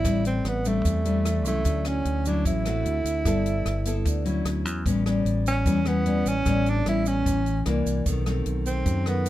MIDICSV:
0, 0, Header, 1, 5, 480
1, 0, Start_track
1, 0, Tempo, 400267
1, 64, Time_signature, 4, 2, 24, 8
1, 11143, End_track
2, 0, Start_track
2, 0, Title_t, "Tenor saxophone"
2, 0, Program_c, 0, 66
2, 0, Note_on_c, 0, 64, 100
2, 310, Note_off_c, 0, 64, 0
2, 321, Note_on_c, 0, 60, 77
2, 571, Note_on_c, 0, 59, 73
2, 589, Note_off_c, 0, 60, 0
2, 808, Note_on_c, 0, 57, 79
2, 826, Note_off_c, 0, 59, 0
2, 1757, Note_off_c, 0, 57, 0
2, 1767, Note_on_c, 0, 57, 87
2, 2247, Note_on_c, 0, 61, 83
2, 2265, Note_off_c, 0, 57, 0
2, 2723, Note_on_c, 0, 62, 76
2, 2741, Note_off_c, 0, 61, 0
2, 2951, Note_off_c, 0, 62, 0
2, 2958, Note_on_c, 0, 64, 86
2, 5305, Note_off_c, 0, 64, 0
2, 6567, Note_on_c, 0, 61, 79
2, 7045, Note_on_c, 0, 59, 86
2, 7063, Note_off_c, 0, 61, 0
2, 7532, Note_on_c, 0, 61, 101
2, 7550, Note_off_c, 0, 59, 0
2, 8023, Note_on_c, 0, 62, 87
2, 8041, Note_off_c, 0, 61, 0
2, 8245, Note_off_c, 0, 62, 0
2, 8258, Note_on_c, 0, 64, 90
2, 8487, Note_on_c, 0, 61, 85
2, 8505, Note_off_c, 0, 64, 0
2, 9196, Note_off_c, 0, 61, 0
2, 10393, Note_on_c, 0, 60, 77
2, 10890, Note_on_c, 0, 59, 83
2, 10908, Note_off_c, 0, 60, 0
2, 11143, Note_off_c, 0, 59, 0
2, 11143, End_track
3, 0, Start_track
3, 0, Title_t, "Nylon-string guitar"
3, 0, Program_c, 1, 24
3, 56, Note_on_c, 1, 45, 50
3, 63, Note_on_c, 1, 55, 51
3, 63, Note_on_c, 1, 60, 53
3, 71, Note_on_c, 1, 62, 54
3, 743, Note_off_c, 1, 55, 0
3, 746, Note_off_c, 1, 60, 0
3, 747, Note_off_c, 1, 62, 0
3, 784, Note_on_c, 1, 55, 61
3, 791, Note_on_c, 1, 60, 62
3, 793, Note_on_c, 1, 62, 58
3, 997, Note_off_c, 1, 45, 0
3, 1022, Note_on_c, 1, 52, 49
3, 1226, Note_off_c, 1, 55, 0
3, 1228, Note_off_c, 1, 60, 0
3, 1230, Note_off_c, 1, 62, 0
3, 1258, Note_on_c, 1, 55, 51
3, 1268, Note_on_c, 1, 60, 51
3, 1276, Note_on_c, 1, 62, 64
3, 1703, Note_off_c, 1, 55, 0
3, 1708, Note_off_c, 1, 60, 0
3, 1711, Note_off_c, 1, 62, 0
3, 1752, Note_on_c, 1, 54, 57
3, 1757, Note_on_c, 1, 61, 60
3, 1763, Note_on_c, 1, 64, 68
3, 1960, Note_off_c, 1, 52, 0
3, 1987, Note_on_c, 1, 50, 50
3, 2671, Note_off_c, 1, 54, 0
3, 2673, Note_off_c, 1, 61, 0
3, 2676, Note_off_c, 1, 64, 0
3, 2720, Note_on_c, 1, 54, 62
3, 2725, Note_on_c, 1, 61, 59
3, 2732, Note_on_c, 1, 64, 66
3, 2923, Note_off_c, 1, 50, 0
3, 2951, Note_on_c, 1, 45, 55
3, 3155, Note_off_c, 1, 54, 0
3, 3156, Note_off_c, 1, 61, 0
3, 3161, Note_off_c, 1, 64, 0
3, 3194, Note_on_c, 1, 57, 59
3, 3201, Note_on_c, 1, 60, 52
3, 3203, Note_on_c, 1, 66, 60
3, 3405, Note_off_c, 1, 45, 0
3, 3873, Note_off_c, 1, 57, 0
3, 3874, Note_off_c, 1, 60, 0
3, 3876, Note_off_c, 1, 66, 0
3, 3906, Note_on_c, 1, 55, 46
3, 3912, Note_on_c, 1, 64, 47
3, 3913, Note_on_c, 1, 59, 52
3, 3919, Note_on_c, 1, 69, 57
3, 4590, Note_off_c, 1, 59, 0
3, 4591, Note_off_c, 1, 64, 0
3, 4594, Note_off_c, 1, 69, 0
3, 4626, Note_on_c, 1, 59, 52
3, 4636, Note_on_c, 1, 64, 64
3, 4642, Note_on_c, 1, 69, 66
3, 4843, Note_off_c, 1, 55, 0
3, 4860, Note_on_c, 1, 50, 54
3, 5068, Note_off_c, 1, 59, 0
3, 5073, Note_off_c, 1, 64, 0
3, 5073, Note_off_c, 1, 69, 0
3, 5098, Note_on_c, 1, 54, 55
3, 5105, Note_on_c, 1, 61, 58
3, 5113, Note_on_c, 1, 64, 61
3, 5319, Note_off_c, 1, 50, 0
3, 5785, Note_off_c, 1, 54, 0
3, 5786, Note_off_c, 1, 61, 0
3, 5792, Note_off_c, 1, 64, 0
3, 5822, Note_on_c, 1, 45, 48
3, 5825, Note_on_c, 1, 55, 51
3, 5834, Note_on_c, 1, 59, 48
3, 5836, Note_on_c, 1, 61, 48
3, 6028, Note_off_c, 1, 55, 0
3, 6030, Note_off_c, 1, 59, 0
3, 6033, Note_off_c, 1, 61, 0
3, 6066, Note_on_c, 1, 55, 58
3, 6066, Note_on_c, 1, 59, 51
3, 6071, Note_on_c, 1, 61, 57
3, 6747, Note_off_c, 1, 59, 0
3, 6748, Note_off_c, 1, 55, 0
3, 6750, Note_off_c, 1, 61, 0
3, 6760, Note_off_c, 1, 45, 0
3, 6783, Note_on_c, 1, 52, 53
3, 6785, Note_on_c, 1, 55, 59
3, 6788, Note_on_c, 1, 59, 50
3, 6796, Note_on_c, 1, 61, 58
3, 6927, Note_off_c, 1, 55, 0
3, 6929, Note_off_c, 1, 59, 0
3, 6931, Note_off_c, 1, 61, 0
3, 7022, Note_on_c, 1, 55, 53
3, 7030, Note_on_c, 1, 59, 58
3, 7039, Note_on_c, 1, 61, 59
3, 7226, Note_off_c, 1, 55, 0
3, 7231, Note_off_c, 1, 59, 0
3, 7233, Note_off_c, 1, 61, 0
3, 7262, Note_on_c, 1, 55, 64
3, 7270, Note_on_c, 1, 59, 51
3, 7274, Note_on_c, 1, 61, 62
3, 7574, Note_off_c, 1, 55, 0
3, 7576, Note_off_c, 1, 59, 0
3, 7579, Note_off_c, 1, 61, 0
3, 7721, Note_off_c, 1, 52, 0
3, 7743, Note_on_c, 1, 45, 55
3, 7746, Note_on_c, 1, 55, 47
3, 7748, Note_on_c, 1, 59, 52
3, 7753, Note_on_c, 1, 61, 59
3, 8187, Note_off_c, 1, 55, 0
3, 8189, Note_off_c, 1, 59, 0
3, 8190, Note_off_c, 1, 61, 0
3, 8224, Note_on_c, 1, 55, 49
3, 8229, Note_on_c, 1, 59, 47
3, 8236, Note_on_c, 1, 61, 57
3, 8681, Note_off_c, 1, 45, 0
3, 8712, Note_on_c, 1, 52, 55
3, 8870, Note_off_c, 1, 55, 0
3, 8874, Note_off_c, 1, 59, 0
3, 8874, Note_off_c, 1, 61, 0
3, 9165, Note_off_c, 1, 52, 0
3, 9187, Note_on_c, 1, 52, 63
3, 9192, Note_on_c, 1, 58, 62
3, 9198, Note_on_c, 1, 62, 66
3, 9647, Note_off_c, 1, 52, 0
3, 9649, Note_off_c, 1, 58, 0
3, 9652, Note_off_c, 1, 62, 0
3, 9673, Note_on_c, 1, 47, 53
3, 9682, Note_on_c, 1, 51, 51
3, 9683, Note_on_c, 1, 57, 50
3, 9689, Note_on_c, 1, 60, 52
3, 9873, Note_off_c, 1, 51, 0
3, 9875, Note_off_c, 1, 57, 0
3, 9879, Note_off_c, 1, 60, 0
3, 9909, Note_on_c, 1, 51, 58
3, 9912, Note_on_c, 1, 57, 55
3, 9919, Note_on_c, 1, 60, 58
3, 10605, Note_off_c, 1, 47, 0
3, 10628, Note_on_c, 1, 42, 56
3, 10827, Note_off_c, 1, 51, 0
3, 10828, Note_off_c, 1, 57, 0
3, 10832, Note_off_c, 1, 60, 0
3, 10871, Note_on_c, 1, 51, 55
3, 10879, Note_on_c, 1, 57, 56
3, 11143, Note_off_c, 1, 42, 0
3, 11143, Note_off_c, 1, 51, 0
3, 11143, Note_off_c, 1, 57, 0
3, 11143, End_track
4, 0, Start_track
4, 0, Title_t, "Fingered electric bass"
4, 0, Program_c, 2, 33
4, 52, Note_on_c, 2, 33, 85
4, 504, Note_off_c, 2, 33, 0
4, 537, Note_on_c, 2, 33, 89
4, 987, Note_off_c, 2, 33, 0
4, 1019, Note_on_c, 2, 40, 83
4, 1734, Note_off_c, 2, 40, 0
4, 1734, Note_on_c, 2, 36, 74
4, 1962, Note_off_c, 2, 36, 0
4, 1977, Note_on_c, 2, 38, 79
4, 2427, Note_off_c, 2, 38, 0
4, 2463, Note_on_c, 2, 38, 86
4, 2910, Note_off_c, 2, 38, 0
4, 2942, Note_on_c, 2, 33, 81
4, 3390, Note_off_c, 2, 33, 0
4, 3418, Note_on_c, 2, 38, 90
4, 3645, Note_off_c, 2, 38, 0
4, 3652, Note_on_c, 2, 38, 75
4, 3882, Note_off_c, 2, 38, 0
4, 3901, Note_on_c, 2, 31, 86
4, 4350, Note_off_c, 2, 31, 0
4, 4383, Note_on_c, 2, 31, 89
4, 4831, Note_off_c, 2, 31, 0
4, 4860, Note_on_c, 2, 38, 76
4, 5310, Note_off_c, 2, 38, 0
4, 5338, Note_on_c, 2, 38, 86
4, 5579, Note_off_c, 2, 38, 0
4, 5579, Note_on_c, 2, 40, 80
4, 5806, Note_off_c, 2, 40, 0
4, 5822, Note_on_c, 2, 33, 72
4, 6271, Note_off_c, 2, 33, 0
4, 6298, Note_on_c, 2, 33, 76
4, 6748, Note_off_c, 2, 33, 0
4, 6783, Note_on_c, 2, 40, 93
4, 7457, Note_off_c, 2, 40, 0
4, 7503, Note_on_c, 2, 33, 70
4, 7728, Note_off_c, 2, 33, 0
4, 7742, Note_on_c, 2, 33, 85
4, 8191, Note_off_c, 2, 33, 0
4, 8226, Note_on_c, 2, 33, 84
4, 8672, Note_off_c, 2, 33, 0
4, 8706, Note_on_c, 2, 33, 92
4, 9152, Note_off_c, 2, 33, 0
4, 9189, Note_on_c, 2, 36, 103
4, 9410, Note_off_c, 2, 36, 0
4, 9425, Note_on_c, 2, 36, 77
4, 9648, Note_off_c, 2, 36, 0
4, 9663, Note_on_c, 2, 35, 74
4, 10110, Note_off_c, 2, 35, 0
4, 10144, Note_on_c, 2, 35, 77
4, 10590, Note_off_c, 2, 35, 0
4, 10622, Note_on_c, 2, 42, 90
4, 11143, Note_off_c, 2, 42, 0
4, 11143, End_track
5, 0, Start_track
5, 0, Title_t, "Drums"
5, 56, Note_on_c, 9, 37, 49
5, 56, Note_on_c, 9, 42, 54
5, 57, Note_on_c, 9, 36, 52
5, 59, Note_on_c, 9, 82, 59
5, 176, Note_off_c, 9, 37, 0
5, 176, Note_off_c, 9, 42, 0
5, 177, Note_off_c, 9, 36, 0
5, 179, Note_off_c, 9, 82, 0
5, 298, Note_on_c, 9, 42, 40
5, 300, Note_on_c, 9, 82, 23
5, 418, Note_off_c, 9, 42, 0
5, 420, Note_off_c, 9, 82, 0
5, 538, Note_on_c, 9, 37, 47
5, 538, Note_on_c, 9, 42, 38
5, 658, Note_off_c, 9, 37, 0
5, 658, Note_off_c, 9, 42, 0
5, 781, Note_on_c, 9, 82, 58
5, 782, Note_on_c, 9, 42, 43
5, 901, Note_off_c, 9, 82, 0
5, 902, Note_off_c, 9, 42, 0
5, 1021, Note_on_c, 9, 36, 54
5, 1023, Note_on_c, 9, 82, 54
5, 1025, Note_on_c, 9, 42, 55
5, 1141, Note_off_c, 9, 36, 0
5, 1143, Note_off_c, 9, 82, 0
5, 1145, Note_off_c, 9, 42, 0
5, 1263, Note_on_c, 9, 42, 40
5, 1266, Note_on_c, 9, 82, 23
5, 1383, Note_off_c, 9, 42, 0
5, 1386, Note_off_c, 9, 82, 0
5, 1503, Note_on_c, 9, 37, 61
5, 1503, Note_on_c, 9, 42, 42
5, 1513, Note_on_c, 9, 82, 52
5, 1623, Note_off_c, 9, 37, 0
5, 1623, Note_off_c, 9, 42, 0
5, 1633, Note_off_c, 9, 82, 0
5, 1744, Note_on_c, 9, 42, 43
5, 1745, Note_on_c, 9, 82, 57
5, 1864, Note_off_c, 9, 42, 0
5, 1865, Note_off_c, 9, 82, 0
5, 1978, Note_on_c, 9, 42, 54
5, 1980, Note_on_c, 9, 82, 56
5, 1981, Note_on_c, 9, 36, 51
5, 2098, Note_off_c, 9, 42, 0
5, 2100, Note_off_c, 9, 82, 0
5, 2101, Note_off_c, 9, 36, 0
5, 2216, Note_on_c, 9, 37, 55
5, 2216, Note_on_c, 9, 42, 38
5, 2226, Note_on_c, 9, 82, 24
5, 2336, Note_off_c, 9, 37, 0
5, 2336, Note_off_c, 9, 42, 0
5, 2346, Note_off_c, 9, 82, 0
5, 2462, Note_on_c, 9, 42, 34
5, 2582, Note_off_c, 9, 42, 0
5, 2703, Note_on_c, 9, 42, 36
5, 2704, Note_on_c, 9, 82, 56
5, 2823, Note_off_c, 9, 42, 0
5, 2824, Note_off_c, 9, 82, 0
5, 2942, Note_on_c, 9, 42, 49
5, 2943, Note_on_c, 9, 36, 54
5, 2949, Note_on_c, 9, 82, 55
5, 3062, Note_off_c, 9, 42, 0
5, 3063, Note_off_c, 9, 36, 0
5, 3069, Note_off_c, 9, 82, 0
5, 3183, Note_on_c, 9, 37, 51
5, 3183, Note_on_c, 9, 42, 40
5, 3191, Note_on_c, 9, 82, 26
5, 3303, Note_off_c, 9, 37, 0
5, 3303, Note_off_c, 9, 42, 0
5, 3311, Note_off_c, 9, 82, 0
5, 3424, Note_on_c, 9, 42, 42
5, 3544, Note_off_c, 9, 42, 0
5, 3663, Note_on_c, 9, 42, 43
5, 3673, Note_on_c, 9, 82, 57
5, 3783, Note_off_c, 9, 42, 0
5, 3793, Note_off_c, 9, 82, 0
5, 3900, Note_on_c, 9, 37, 56
5, 3900, Note_on_c, 9, 42, 49
5, 3902, Note_on_c, 9, 36, 55
5, 3909, Note_on_c, 9, 82, 58
5, 4020, Note_off_c, 9, 37, 0
5, 4020, Note_off_c, 9, 42, 0
5, 4022, Note_off_c, 9, 36, 0
5, 4029, Note_off_c, 9, 82, 0
5, 4146, Note_on_c, 9, 42, 41
5, 4149, Note_on_c, 9, 82, 22
5, 4266, Note_off_c, 9, 42, 0
5, 4269, Note_off_c, 9, 82, 0
5, 4385, Note_on_c, 9, 37, 52
5, 4385, Note_on_c, 9, 42, 39
5, 4505, Note_off_c, 9, 37, 0
5, 4505, Note_off_c, 9, 42, 0
5, 4622, Note_on_c, 9, 42, 41
5, 4637, Note_on_c, 9, 82, 59
5, 4742, Note_off_c, 9, 42, 0
5, 4757, Note_off_c, 9, 82, 0
5, 4862, Note_on_c, 9, 42, 53
5, 4863, Note_on_c, 9, 36, 54
5, 4878, Note_on_c, 9, 82, 60
5, 4982, Note_off_c, 9, 42, 0
5, 4983, Note_off_c, 9, 36, 0
5, 4997, Note_off_c, 9, 82, 0
5, 5102, Note_on_c, 9, 42, 37
5, 5119, Note_on_c, 9, 82, 23
5, 5222, Note_off_c, 9, 42, 0
5, 5239, Note_off_c, 9, 82, 0
5, 5341, Note_on_c, 9, 37, 60
5, 5341, Note_on_c, 9, 42, 45
5, 5461, Note_off_c, 9, 37, 0
5, 5461, Note_off_c, 9, 42, 0
5, 5583, Note_on_c, 9, 42, 42
5, 5600, Note_on_c, 9, 82, 54
5, 5703, Note_off_c, 9, 42, 0
5, 5720, Note_off_c, 9, 82, 0
5, 5825, Note_on_c, 9, 36, 59
5, 5828, Note_on_c, 9, 42, 42
5, 5842, Note_on_c, 9, 82, 57
5, 5945, Note_off_c, 9, 36, 0
5, 5948, Note_off_c, 9, 42, 0
5, 5962, Note_off_c, 9, 82, 0
5, 6068, Note_on_c, 9, 37, 53
5, 6068, Note_on_c, 9, 42, 25
5, 6080, Note_on_c, 9, 82, 23
5, 6188, Note_off_c, 9, 37, 0
5, 6188, Note_off_c, 9, 42, 0
5, 6200, Note_off_c, 9, 82, 0
5, 6307, Note_on_c, 9, 42, 36
5, 6427, Note_off_c, 9, 42, 0
5, 6546, Note_on_c, 9, 42, 22
5, 6556, Note_on_c, 9, 82, 57
5, 6666, Note_off_c, 9, 42, 0
5, 6676, Note_off_c, 9, 82, 0
5, 6783, Note_on_c, 9, 42, 38
5, 6784, Note_on_c, 9, 36, 55
5, 6794, Note_on_c, 9, 82, 58
5, 6903, Note_off_c, 9, 42, 0
5, 6904, Note_off_c, 9, 36, 0
5, 6914, Note_off_c, 9, 82, 0
5, 7020, Note_on_c, 9, 37, 51
5, 7020, Note_on_c, 9, 42, 25
5, 7025, Note_on_c, 9, 82, 25
5, 7140, Note_off_c, 9, 37, 0
5, 7140, Note_off_c, 9, 42, 0
5, 7145, Note_off_c, 9, 82, 0
5, 7264, Note_on_c, 9, 42, 40
5, 7384, Note_off_c, 9, 42, 0
5, 7504, Note_on_c, 9, 42, 29
5, 7511, Note_on_c, 9, 82, 57
5, 7624, Note_off_c, 9, 42, 0
5, 7631, Note_off_c, 9, 82, 0
5, 7744, Note_on_c, 9, 82, 56
5, 7746, Note_on_c, 9, 36, 58
5, 7746, Note_on_c, 9, 37, 53
5, 7746, Note_on_c, 9, 42, 40
5, 7864, Note_off_c, 9, 82, 0
5, 7866, Note_off_c, 9, 36, 0
5, 7866, Note_off_c, 9, 37, 0
5, 7866, Note_off_c, 9, 42, 0
5, 7989, Note_on_c, 9, 42, 26
5, 7992, Note_on_c, 9, 82, 23
5, 8109, Note_off_c, 9, 42, 0
5, 8112, Note_off_c, 9, 82, 0
5, 8226, Note_on_c, 9, 37, 50
5, 8226, Note_on_c, 9, 42, 41
5, 8346, Note_off_c, 9, 37, 0
5, 8346, Note_off_c, 9, 42, 0
5, 8464, Note_on_c, 9, 82, 57
5, 8468, Note_on_c, 9, 42, 25
5, 8584, Note_off_c, 9, 82, 0
5, 8588, Note_off_c, 9, 42, 0
5, 8707, Note_on_c, 9, 36, 54
5, 8707, Note_on_c, 9, 42, 42
5, 8716, Note_on_c, 9, 82, 62
5, 8827, Note_off_c, 9, 36, 0
5, 8827, Note_off_c, 9, 42, 0
5, 8836, Note_off_c, 9, 82, 0
5, 8946, Note_on_c, 9, 42, 26
5, 8957, Note_on_c, 9, 82, 27
5, 9066, Note_off_c, 9, 42, 0
5, 9077, Note_off_c, 9, 82, 0
5, 9183, Note_on_c, 9, 37, 57
5, 9183, Note_on_c, 9, 42, 45
5, 9303, Note_off_c, 9, 37, 0
5, 9303, Note_off_c, 9, 42, 0
5, 9431, Note_on_c, 9, 42, 30
5, 9433, Note_on_c, 9, 82, 59
5, 9551, Note_off_c, 9, 42, 0
5, 9553, Note_off_c, 9, 82, 0
5, 9663, Note_on_c, 9, 42, 40
5, 9666, Note_on_c, 9, 36, 54
5, 9671, Note_on_c, 9, 82, 65
5, 9782, Note_off_c, 9, 42, 0
5, 9786, Note_off_c, 9, 36, 0
5, 9791, Note_off_c, 9, 82, 0
5, 9907, Note_on_c, 9, 37, 54
5, 9907, Note_on_c, 9, 42, 24
5, 9910, Note_on_c, 9, 82, 24
5, 10027, Note_off_c, 9, 37, 0
5, 10027, Note_off_c, 9, 42, 0
5, 10030, Note_off_c, 9, 82, 0
5, 10142, Note_on_c, 9, 42, 40
5, 10262, Note_off_c, 9, 42, 0
5, 10380, Note_on_c, 9, 42, 24
5, 10388, Note_on_c, 9, 82, 57
5, 10500, Note_off_c, 9, 42, 0
5, 10508, Note_off_c, 9, 82, 0
5, 10620, Note_on_c, 9, 42, 41
5, 10624, Note_on_c, 9, 36, 61
5, 10636, Note_on_c, 9, 82, 57
5, 10740, Note_off_c, 9, 42, 0
5, 10744, Note_off_c, 9, 36, 0
5, 10756, Note_off_c, 9, 82, 0
5, 10863, Note_on_c, 9, 37, 53
5, 10863, Note_on_c, 9, 42, 23
5, 10878, Note_on_c, 9, 82, 26
5, 10983, Note_off_c, 9, 37, 0
5, 10983, Note_off_c, 9, 42, 0
5, 10997, Note_off_c, 9, 82, 0
5, 11100, Note_on_c, 9, 42, 42
5, 11104, Note_on_c, 9, 82, 55
5, 11143, Note_off_c, 9, 42, 0
5, 11143, Note_off_c, 9, 82, 0
5, 11143, End_track
0, 0, End_of_file